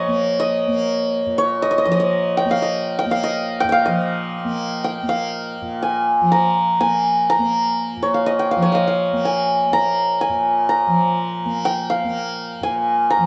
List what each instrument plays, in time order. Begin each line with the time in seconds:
Already playing: tanpura A#2 F3 A#3, santur C#5 D#5 F5
0.08 tanpura A#3
0.40 santur D#5
0.68 tanpura A#3
1.26 tanpura A#2
1.38 santur C#5
1.62 santur D#5
1.71 santur D#5
1.78 santur D#5
1.85 tanpura F3, santur D#5
1.92 santur D#5
2.00 santur D#5
2.37 santur G5
2.45 tanpura A#3
2.51 santur F5
2.62 santur D#5
2.99 santur G5
3.06 tanpura A#3
3.11 santur F5
3.24 santur D#5
3.60 tanpura A#2, santur G5
3.69 santur F5 G5
3.85 tanpura F3, santur D#5
4.45 tanpura A#3
4.84 santur G5
5.03 tanpura A#3
5.09 santur F5
5.62 tanpura A#2
5.82 santur G#5
6.21 tanpura F3
6.32 santur A#5
6.80 tanpura A#3, santur G#5
7.30 santur A#5
7.39 tanpura A#3
7.97 tanpura A#2
8.02 santur C#5
8.14 santur F5
8.26 santur D#5
8.39 santur G5
8.51 santur F5
8.56 tanpura F3
8.62 santur C#5
8.72 santur D#5 F5
8.87 santur F5
9.13 tanpura A#3
9.25 santur G#5
9.71 tanpura A#3, santur A#5
10.21 santur G#5
10.29 tanpura A#2
10.69 santur A#5
10.87 tanpura F3
11.45 tanpura A#3
11.65 santur G5
11.90 santur F5
12.04 tanpura A#3
12.61 tanpura A#2, santur G#5
13.10 santur A#5
13.18 tanpura F3